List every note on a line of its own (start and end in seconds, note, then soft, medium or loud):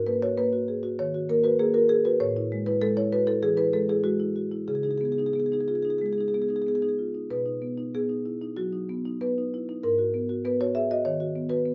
0.00 0.94 G#2 medium
0.00 0.15 F#4 soft
0.07 0.31 A#3 soft
0.07 0.21 B4 medium
0.22 0.46 F#4 soft
0.22 0.37 C#5 medium
0.37 0.61 A#3 medium
0.37 0.96 B4 medium
0.53 0.77 F#4 soft
0.68 0.83 G#4 soft
0.83 1.07 F#4 medium
0.99 1.23 D#3 soft
0.99 1.27 C#5 medium
1.14 1.38 F#4 medium
1.29 1.53 A#3 medium
1.29 1.44 A#4 medium
1.44 1.68 F#4 medium
1.44 1.59 B4 medium
1.59 1.83 A#3 medium
1.59 1.74 G#4 medium
1.74 1.98 F#4 soft
1.74 1.89 A#4 medium
1.89 2.04 G#4 medium
2.05 2.20 F#4 medium
2.05 2.20 B4 medium
2.20 3.38 A2 medium
2.20 2.64 C#5 medium
2.37 2.60 E4 soft
2.52 2.76 G#3 medium
2.66 2.90 E4 medium
2.66 2.81 B4 medium
2.82 3.05 G#3 medium
2.82 2.96 A4 loud
2.97 3.21 E4 medium
2.97 3.12 C#5 medium
3.12 3.27 F#4 soft
3.12 3.27 B4 medium
3.27 3.51 E4 medium
3.27 3.42 A4 medium
3.43 3.67 E3 medium
3.43 3.58 G#4 loud
3.57 3.82 E4 medium
3.57 3.73 B4 medium
3.73 3.98 G#3 soft
3.73 3.89 A4 medium
3.89 4.14 E4 soft
3.89 4.05 G#4 medium
4.04 4.29 G#3 medium
4.04 4.35 F#4 medium
4.20 4.45 E4 soft
4.36 4.52 F#4 soft
4.51 4.68 E4 soft
4.68 5.97 C#3 medium
4.68 4.75 G#4 medium
4.75 4.83 G#4 soft
4.83 5.11 D#4 soft
4.83 4.91 G#4 medium
4.91 4.98 G#4 soft
4.98 5.28 B3 soft
4.98 5.05 G#4 medium
5.05 5.12 G#4 soft
5.12 5.19 G#4 medium
5.18 5.45 D#4 soft
5.18 5.26 G#4 medium
5.26 5.33 G#4 medium
5.33 5.62 B3 soft
5.33 5.40 G#4 medium
5.40 5.46 G#4 medium
5.46 5.53 G#4 medium
5.52 5.78 D#4 soft
5.52 5.60 G#4 medium
5.60 5.68 G#4 medium
5.68 5.85 F4 soft
5.68 5.75 G#4 medium
5.75 5.83 G#4 medium
5.83 6.11 D#4 soft
5.83 5.90 G#4 medium
5.90 5.98 G#4 medium
5.98 6.27 G#3 soft
5.98 6.06 G#4 medium
6.06 6.13 G#4 medium
6.13 6.21 G#4 medium
6.18 6.43 D#4 soft
6.18 6.28 G#4 medium
6.28 6.34 G#4 medium
6.34 6.60 B3 soft
6.34 6.42 G#4 soft
6.42 6.49 G#4 medium
6.49 6.76 D#4 soft
6.49 6.56 G#4 soft
6.56 6.62 G#4 medium
6.62 6.68 G#4 medium
6.67 6.92 B3 soft
6.67 6.75 G#4 medium
6.75 6.82 G#4 medium
6.82 7.08 D#4 soft
6.82 6.89 G#4 medium
6.89 6.94 G#4 soft
6.99 7.14 F4 soft
7.14 7.30 D#4 soft
7.30 8.52 B2 soft
7.30 7.91 B4 medium
7.46 7.71 D#4 soft
7.62 7.87 B3 soft
7.78 8.02 D#4 soft
7.95 8.19 B3 soft
7.95 8.54 G#4 medium
8.09 8.34 D#4 soft
8.26 8.41 E4 soft
8.41 8.66 D#4 soft
8.57 8.82 F#3 soft
8.57 9.19 F#4 medium
8.73 8.98 D#4 soft
8.89 9.15 B3 soft
9.05 9.31 D#4 soft
9.21 9.46 B3 soft
9.21 9.81 B4 medium
9.38 9.62 D#4 soft
9.54 9.69 E4 soft
9.69 9.84 D#4 soft
9.83 11.02 G#2 medium
9.83 10.42 A#4 medium
9.98 10.23 F#4 soft
10.14 10.38 B3 soft
10.29 10.54 F#4 soft
10.45 10.69 B3 medium
10.45 10.60 B4 medium
10.61 10.84 F#4 soft
10.61 10.75 C#5 medium
10.75 10.90 G#4 soft
10.75 10.90 E5 medium
10.91 11.15 F#4 soft
10.91 11.06 D#5 medium
11.05 11.30 D#3 medium
11.05 11.49 C#5 medium
11.20 11.45 F#4 soft
11.36 11.60 B3 soft
11.49 11.74 F#4 soft
11.49 11.74 B4 medium
11.66 11.74 B3 soft